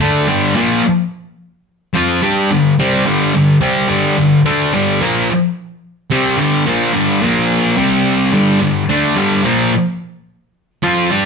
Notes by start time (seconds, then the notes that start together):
0.00 D3 A3 D4
0.28 G2 D3 G3
0.55 A#2 F3 A#3
1.93 F3 C4 F4
2.22 G3 D4 G4
2.50 G2 D3
2.79 C3 G3 C4
3.05 G2 D3 G3
3.35 G2 D3
3.61 C3 G3 C4
3.88 G2 D3 G3
4.18 G2 D3
4.46 D3 A3 D4
4.73 G2 D3 G3
5.01 A#2 F3 A#3
6.11 C3 G3 C4
6.37 G2 D3 G3
6.67 A#2 F3 A#3
6.94 G2 D3 G3
7.21 A#2 F3 A#3
7.76 C3 G3 C4
8.33 G2 D3 G3
8.60 G2 D3
8.89 D3 A3 D4
9.16 G2 D3 G3
9.44 A#2 F3 A#3
10.83 F3 C4 F4
11.12 G3 D4 G4